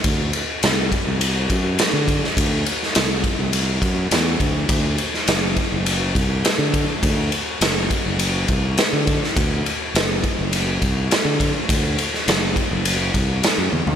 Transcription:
<<
  \new Staff \with { instrumentName = "Fingered electric bass" } { \clef bass \time 4/4 \key d \mixolydian \tempo 4 = 103 d,8 r8 c,8 r16 c,8. fis,8 r16 d8 r16 | d,8 r8 c,8 r16 c,8. fis,8 e,8 d,8 | d,8 r8 fis,,8 r16 fis,,8. c,8 r16 d8 r16 | d,8 r8 fis,,8 r16 fis,,8. c,8 r16 d8 r16 |
d,8 r8 fis,,8 r16 fis,,8. c,8 r16 d8 r16 | d,8 r8 fis,,8 r16 fis,,8. c,8 r16 fis,16 e,16 d,16 | }
  \new DrumStaff \with { instrumentName = "Drums" } \drummode { \time 4/4 <bd cymr>8 cymr8 <cymr sn>8 <bd cymr>8 cymr8 <bd cymr>8 <cymr sn>8 <bd cymr>16 sn16 | <bd cymr>8 cymr16 sn16 <cymr sn>8 <bd cymr>8 cymr8 <bd cymr>8 <cymr sn>8 <bd cymr>8 | <bd cymr>8 cymr16 sn16 <cymr sn>8 <bd cymr>8 cymr8 <bd cymr>8 <cymr sn>8 <bd cymr>8 | <bd cymr>8 cymr8 <cymr sn>8 <bd cymr>8 cymr8 <bd cymr>8 <cymr sn>8 <bd cymr>16 sn16 |
<bd cymr>8 cymr8 <cymr sn>8 <bd cymr>8 cymr8 <bd cymr>8 <cymr sn>8 <bd cymr>8 | <bd cymr>8 cymr16 sn16 <cymr sn>8 <bd cymr>8 cymr8 <bd cymr>8 <cymr sn>8 tommh16 tomfh16 | }
>>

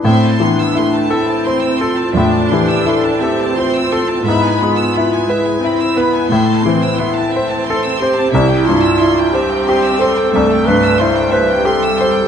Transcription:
<<
  \new Staff \with { instrumentName = "Violin section" } { \time 12/8 \key a \minor \tempo 4. = 59 << { c'''1. | b''2. c'''2.~ | c'''1. | } \\ { e''16 a''16 c'''16 e'''16 c'''16 a''16 e''16 a''16 c'''16 e'''16 c'''16 a''16 e''16 a''16 c'''16 e'''16 c'''16 a''16 e''16 a''16 c'''16 e'''16 c'''16 a''16 | e''16 gis''16 b''16 e'''16 b''16 gis''16 e''16 gis''16 b''16 e'''16 b''16 gis''16 e''16 a''16 c'''16 e'''16 c'''16 a''16 e''16 a''16 c'''16 e'''16 c'''16 a''16 | e''16 g''16 c'''16 e'''16 c'''16 g''16 e''16 g''16 c'''16 e'''16 c'''16 g''16 e''16 g''16 c'''16 e'''16 c'''16 g''16 e''16 g''16 c'''16 e'''16 c'''16 g''16 | } >> }
  \new Staff \with { instrumentName = "Clarinet" } { \time 12/8 \key a \minor e'8 d'4 e'4 f'4 g'8 a'8 g'8 f'4 | e'8 f'4 e'2.~ e'8 r8 g'8~ | g'8 f'4 g'4 a'4 b'8 c''8 b'8 a'4 | }
  \new Staff \with { instrumentName = "Grand piano" } { \time 12/8 \key a \minor a,8 e8 e'8 a'8 c''8 a'8 a,8 e8 e'8 a'8 c''8 a'8 | gis,8 gis8 e'8 b'8 e'8 b'8 a,8 e8 e'8 c''8 a'8 c''8 | c,8 g,8 e'8 c''8 g'8 c''8 c,8 g,8 e'8 c''8 g'8 c''8 | }
  \new Staff \with { instrumentName = "Viola section" } { \time 12/8 \key a \minor c'8 b8 a8 c'4. d'4. c'4. | b4. gis8 c'8 b8 a8 c'8 b8 c'4. | e'4. c'4. a4. g4. | }
  \new Staff \with { instrumentName = "Cello section" } { \clef bass \time 12/8 \key a \minor a,4. r4. e,4. r4. | gis,4. r4. a,4. r4. | c4. r4. g,4. r4. | }
>>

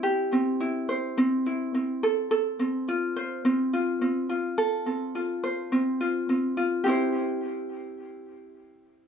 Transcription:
\new Staff \with { instrumentName = "Ukulele" } { \time 4/4 \key c \major \tempo 4 = 106 <c' e' g' c''>8 c'8 e'8 c''8 c'8 e'8 c'8 a'8 | a'8 c'8 f'8 c''8 c'8 f'8 c'8 f'8 | a'8 c'8 f'8 c''8 c'8 f'8 c'8 f'8 | <c' e' g' c''>1 | }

